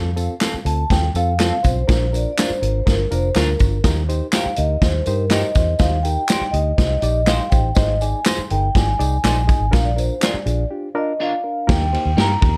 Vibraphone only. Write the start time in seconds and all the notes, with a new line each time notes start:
0.66 A5
0.91 G5
1.17 F5
1.66 C5
2.16 D5
2.32 D5
2.40 C5
2.90 A#4
3.14 C5
4.34 F5
4.57 D#5
4.82 C5
5.06 A#4
5.30 D#5
5.54 D#5
5.79 F5
6.03 G5
6.51 D#5
7.01 D#5
7.26 F5
7.50 G5
7.75 D#5
8.01 G#5
8.51 G5
8.76 G#5
9.24 G#5
9.73 F5
9.85 D5
9.98 C5
10.23 D5
10.97 D#5
11.22 F5
11.71 G5
12.21 A#5